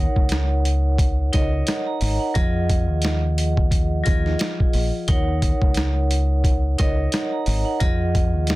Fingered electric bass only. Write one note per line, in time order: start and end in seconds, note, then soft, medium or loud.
0.16 1.29 C#2 medium
1.34 1.62 C#2 medium
2.02 2.17 G#1 loud
2.36 2.89 F2 loud
2.89 4.02 D#2 medium
4.07 4.34 D#2 medium
4.74 4.90 A#1 loud
5.08 5.52 D#2 loud
5.62 6.75 C#2 medium
6.79 7.07 C#2 medium
7.47 7.63 G#1 loud
7.81 8.34 F2 loud
8.34 8.55 D#2 medium